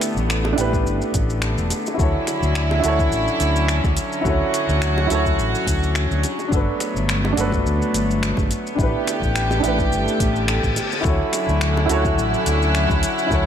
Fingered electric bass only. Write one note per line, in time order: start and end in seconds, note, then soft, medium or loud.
0.16 0.53 A1 loud
0.58 0.80 A1 medium
0.86 0.98 G1 medium
1.14 1.52 A1 medium
1.58 1.68 E1 medium
2.00 2.11 D2 medium
2.42 2.79 D2 loud
2.85 3.07 D2 medium
3.12 3.24 A1 medium
3.40 3.79 D2 medium
3.84 3.94 D2 medium
4.25 4.37 D2 medium
4.69 5.06 D2 loud
5.11 5.33 D2 medium
5.39 5.51 A1 medium
5.67 6.05 D2 medium
6.11 6.21 D2 medium
6.52 6.64 G1 loud
6.96 7.33 G1 loud
7.38 7.60 G1 medium
7.66 7.78 D2 medium
7.94 8.32 G1 medium
8.37 8.47 G1 medium
8.79 8.91 A1 medium
9.22 9.59 A1 loud
9.64 9.86 A1 medium
9.91 10.03 G1 medium
10.20 10.58 A1 medium
10.64 10.74 A1 medium
11.05 11.17 D2 medium
11.49 11.85 D2 loud
11.90 12.12 D2 medium
12.18 12.30 A1 medium
12.47 12.85 D2 medium
12.90 13.00 D2 medium
13.31 13.43 D2 loud